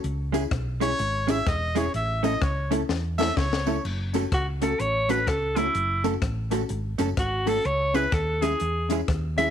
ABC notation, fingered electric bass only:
X:1
M:4/4
L:1/8
Q:"Swing" 1/4=126
K:F#dor
V:1 name="Fingered electric bass" clef=bass
C,,2 B,,,2 G,,,2 E,,,2 | A,,,2 C,,2 E,,2 C,,2 | F,,,2 C,,2 A,,,2 C,,2 | F,,,2 A,,,2 G,,, F,,, G,,,2 |
C,,2 D,,2 E,,2 D,,2 |]